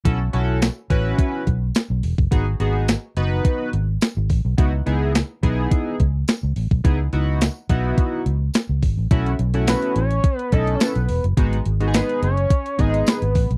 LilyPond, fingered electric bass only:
\new Staff \with { instrumentName = "Fingered electric bass" } { \clef bass \time 4/4 \key b \mixolydian \tempo 4 = 106 b,,8 b,,8. r16 a,,8 r8 b,,8 r16 b,,16 e,,16 fis,,16 | gis,,8 gis,,8. r16 fis,,8 r8 gis,,8 r16 gis,,16 a,,16 b,,16 | cis,8 cis,8. r16 b,,8 r8 cis,8 r16 cis,16 a,,16 b,,16 | cis,8 cis,8. r16 b,,8 r8 cis,8 r16 cis,16 gis,,16 a,,16 |
b,,8 b,,8. r16 a,,8 r8 b,,8 r16 b,,16 e,,16 fis,,16 | gis,,8 gis,,8. r16 fis,,8 r8 gis,,8 r16 gis,,16 a,,16 b,,16 | }